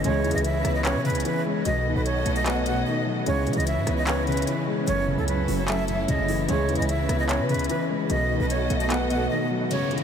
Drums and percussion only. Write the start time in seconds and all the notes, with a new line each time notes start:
0.04 closed hi-hat
0.24 closed hi-hat
0.31 closed hi-hat
0.38 closed hi-hat
0.44 closed hi-hat
0.65 cross-stick, closed hi-hat
0.85 clap, closed hi-hat
1.05 closed hi-hat
1.10 closed hi-hat
1.15 closed hi-hat
1.20 closed hi-hat
1.25 closed hi-hat
1.65 closed hi-hat
2.06 closed hi-hat
2.26 closed hi-hat
2.36 closed hi-hat
2.46 clap, closed hi-hat
2.66 closed hi-hat
3.26 closed hi-hat
3.47 closed hi-hat
3.53 closed hi-hat
3.60 closed hi-hat
3.67 closed hi-hat
3.87 cross-stick, closed hi-hat
4.07 clap, closed hi-hat
4.27 closed hi-hat
4.32 closed hi-hat
4.37 closed hi-hat
4.42 closed hi-hat
4.47 closed hi-hat
4.87 closed hi-hat
5.28 closed hi-hat
5.48 open hi-hat
5.68 clap, closed hi-hat
5.88 closed hi-hat
6.08 closed hi-hat
6.28 open hi-hat
6.49 closed hi-hat
6.69 closed hi-hat
6.75 closed hi-hat
6.82 closed hi-hat
6.89 closed hi-hat
7.09 cross-stick, closed hi-hat
7.29 clap, closed hi-hat
7.49 closed hi-hat
7.54 closed hi-hat
7.59 closed hi-hat
7.64 closed hi-hat
7.69 closed hi-hat
8.10 closed hi-hat
8.50 closed hi-hat
8.70 closed hi-hat
8.80 closed hi-hat
8.90 clap, closed hi-hat
9.10 closed hi-hat
9.71 closed hi-hat
9.91 closed hi-hat
9.98 closed hi-hat